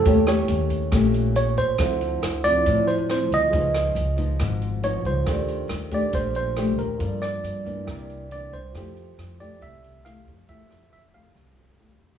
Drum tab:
HH |xxxxxxxx|xxxxxxxx|xxxxxxxx|xxxxxxxx|
SD |-r--r---|r-r---r-|-r--r---|r-r---r-|
T1 |--------|--------|--------|--------|
BD |o--oo--o|o--oo--o|o--oo--o|o--oo--o|

HH |xxxxxxxx|xxxxxxxx|xxxxxxx-|
SD |-r--r---|r-r---r-|-r--r---|
T1 |--------|--------|-------o|
BD |o--oo--o|o--oo--o|o--oo---|